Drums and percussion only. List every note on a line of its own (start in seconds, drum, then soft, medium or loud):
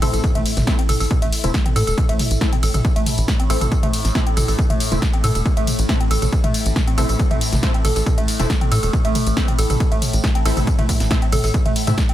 0.02 open hi-hat loud
0.02 mid tom medium
0.02 ride medium
0.02 tambourine medium
0.14 closed hi-hat medium
0.14 tambourine soft
0.24 kick loud
0.24 closed hi-hat medium
0.24 tambourine soft
0.35 closed hi-hat medium
0.35 mid tom medium
0.46 open hi-hat loud
0.46 ride medium
0.46 tambourine medium
0.57 snare soft
0.57 closed hi-hat medium
0.57 mid tom medium
0.57 tambourine soft
0.67 kick loud
0.67 snare loud
0.67 closed hi-hat medium
0.79 closed hi-hat medium
0.89 open hi-hat loud
0.89 mid tom medium
0.89 ride medium
0.89 tambourine medium
1.00 open hi-hat medium
1.00 tambourine soft
1.11 kick loud
1.11 closed hi-hat medium
1.11 mid tom medium
1.22 closed hi-hat medium
1.33 open hi-hat loud
1.33 ride medium
1.33 tambourine medium
1.44 closed hi-hat medium
1.44 mid tom medium
1.44 tambourine soft
1.54 kick loud
1.54 snare loud
1.54 closed hi-hat medium
1.54 tambourine soft
1.66 closed hi-hat medium
1.66 mid tom medium
1.76 open hi-hat loud
1.76 ride medium
1.76 tambourine medium
1.87 closed hi-hat medium
1.87 tambourine soft
1.98 kick loud
1.98 closed hi-hat medium
1.98 mid tom medium
1.98 tambourine soft
2.09 closed hi-hat medium
2.19 open hi-hat loud
2.19 mid tom loud
2.19 ride medium
2.19 tambourine medium
2.31 closed hi-hat medium
2.31 tambourine soft
2.41 kick loud
2.41 snare loud
2.41 closed hi-hat medium
2.53 closed hi-hat medium
2.53 mid tom medium
2.63 open hi-hat loud
2.63 ride medium
2.63 tambourine medium
2.74 closed hi-hat medium
2.74 mid tom loud
2.74 tambourine soft
2.85 kick loud
2.85 closed hi-hat medium
2.85 tambourine soft
2.96 closed hi-hat medium
3.06 open hi-hat loud
3.06 mid tom medium
3.06 ride medium
3.06 tambourine medium
3.18 closed hi-hat medium
3.18 tambourine soft
3.28 kick loud
3.28 snare loud
3.28 closed hi-hat medium
3.28 mid tom loud
3.28 tambourine soft
3.40 closed hi-hat medium
3.50 open hi-hat loud
3.50 ride medium
3.50 tambourine medium
3.61 closed hi-hat medium
3.61 mid tom medium
3.61 tambourine soft
3.72 kick loud
3.72 closed hi-hat medium
3.72 tambourine soft
3.83 closed hi-hat medium
3.83 mid tom medium
3.93 open hi-hat loud
3.93 ride medium
3.93 tambourine medium
4.05 snare soft
4.05 closed hi-hat medium
4.05 tambourine soft
4.15 kick loud
4.15 snare loud
4.15 closed hi-hat medium
4.15 mid tom medium
4.27 closed hi-hat medium
4.37 open hi-hat loud
4.37 mid tom loud
4.37 ride medium
4.37 tambourine medium
4.48 open hi-hat medium
4.48 tambourine soft
4.59 kick loud
4.59 closed hi-hat medium
4.59 tambourine soft
4.70 closed hi-hat medium
4.70 mid tom medium
4.80 open hi-hat loud
4.80 ride medium
4.80 tambourine medium
4.92 closed hi-hat medium
4.92 mid tom medium
4.92 tambourine soft
5.02 kick loud
5.02 snare loud
5.02 closed hi-hat medium
5.02 tambourine soft
5.13 closed hi-hat medium
5.24 open hi-hat loud
5.24 mid tom medium
5.24 ride medium
5.24 tambourine medium
5.35 closed hi-hat medium
5.35 tambourine soft
5.46 kick loud
5.46 closed hi-hat medium
5.46 tambourine soft
5.57 closed hi-hat medium
5.67 open hi-hat loud
5.67 mid tom medium
5.67 ride medium
5.67 tambourine medium
5.79 closed hi-hat medium
5.79 tambourine soft
5.89 kick loud
5.89 snare loud
5.89 closed hi-hat medium
5.89 mid tom loud
6.00 closed hi-hat medium
6.11 open hi-hat loud
6.11 ride medium
6.11 tambourine medium
6.22 closed hi-hat medium
6.22 mid tom medium
6.22 tambourine soft
6.32 kick loud
6.32 closed hi-hat medium
6.32 tambourine soft
6.44 closed hi-hat medium
6.44 mid tom loud
6.54 open hi-hat loud
6.54 ride medium
6.54 tambourine medium
6.66 closed hi-hat medium
6.66 tambourine soft
6.76 kick loud
6.76 snare loud
6.76 closed hi-hat medium
6.76 mid tom medium
6.76 tambourine soft
6.87 closed hi-hat medium
6.98 open hi-hat loud
6.98 mid tom loud
6.98 ride medium
6.98 tambourine medium
7.09 closed hi-hat medium
7.09 tambourine soft
7.19 kick loud
7.19 closed hi-hat medium
7.31 closed hi-hat medium
7.31 mid tom medium
7.41 open hi-hat loud
7.41 ride medium
7.41 tambourine medium
7.53 snare soft
7.53 closed hi-hat medium
7.53 mid tom loud
7.53 tambourine soft
7.63 kick loud
7.63 snare loud
7.63 closed hi-hat medium
7.74 closed hi-hat medium
7.85 open hi-hat loud
7.85 mid tom medium
7.85 ride medium
7.85 tambourine medium
7.96 open hi-hat medium
7.96 tambourine soft
8.06 kick loud
8.06 closed hi-hat medium
8.06 mid tom medium
8.06 tambourine soft
8.18 closed hi-hat medium
8.28 open hi-hat loud
8.28 ride medium
8.28 tambourine medium
8.40 closed hi-hat medium
8.40 mid tom medium
8.40 tambourine soft
8.50 kick loud
8.50 snare loud
8.50 closed hi-hat medium
8.61 closed hi-hat medium
8.61 mid tom medium
8.72 open hi-hat loud
8.72 ride medium
8.72 tambourine medium
8.83 closed hi-hat medium
8.83 tambourine soft
8.93 kick loud
8.93 closed hi-hat medium
8.93 mid tom medium
8.93 tambourine soft
9.05 closed hi-hat medium
9.15 open hi-hat loud
9.15 mid tom medium
9.15 ride medium
9.15 tambourine medium
9.27 closed hi-hat medium
9.27 tambourine soft
9.37 kick loud
9.37 snare loud
9.37 closed hi-hat medium
9.37 tambourine soft
9.48 closed hi-hat medium
9.48 mid tom medium
9.59 open hi-hat loud
9.59 ride medium
9.59 tambourine medium
9.70 closed hi-hat medium
9.70 mid tom medium
9.70 tambourine soft
9.80 kick loud
9.80 closed hi-hat medium
9.80 tambourine soft
9.92 closed hi-hat medium
10.02 open hi-hat loud
10.02 mid tom medium
10.02 ride medium
10.02 tambourine medium
10.13 closed hi-hat medium
10.13 tambourine soft
10.24 kick loud
10.24 snare loud
10.24 closed hi-hat medium
10.24 mid tom medium
10.35 closed hi-hat medium
10.46 open hi-hat loud
10.46 ride medium
10.46 tambourine medium
10.57 closed hi-hat medium
10.57 mid tom medium
10.57 tambourine soft
10.67 kick loud
10.67 closed hi-hat medium
10.67 tambourine soft
10.79 closed hi-hat medium
10.79 mid tom medium
10.89 kick medium
10.89 open hi-hat loud
10.89 ride medium
10.89 tambourine medium
11.00 snare soft
11.00 closed hi-hat medium
11.00 tambourine soft
11.11 kick loud
11.11 snare loud
11.11 closed hi-hat medium
11.11 mid tom medium
11.22 closed hi-hat medium
11.32 open hi-hat loud
11.32 mid tom medium
11.32 ride medium
11.32 tambourine medium
11.44 open hi-hat medium
11.44 tambourine soft
11.54 kick loud
11.54 closed hi-hat medium
11.66 closed hi-hat medium
11.66 mid tom medium
11.76 open hi-hat loud
11.76 ride medium
11.76 tambourine medium
11.87 closed hi-hat medium
11.87 mid tom medium
11.87 tambourine soft
11.98 kick loud
11.98 snare loud
11.98 closed hi-hat medium
11.98 tambourine soft
12.09 closed hi-hat medium